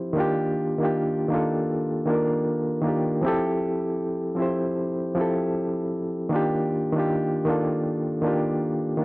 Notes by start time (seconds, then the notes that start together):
Already playing: F3 C4 E4 G4 C5
0.13 D#3 A#3 D4
0.18 F4 G4
0.78 D#3 A#3 D4
0.83 F4 G4
1.28 D#3 A#3 D4
1.34 F4 A4
2.06 D#3 A#3 D4
2.10 F4 A#4
2.82 D#3 A#3 D4
2.87 F4 G4
3.21 F3 C4 E4
3.26 G4 A4
4.35 F3 C4 E4
4.40 G4 C5
5.15 F3 C4 E4
5.19 G4 A4
6.29 D#3 A#3 D4
6.34 F4 G4
6.93 D#3 A#3 D4
6.98 F4 G4
7.45 D#3 A#3 D4
7.50 F4 A4
8.21 D#3 A#3 D4
8.26 F4 G4
8.97 D#3 A#3 D4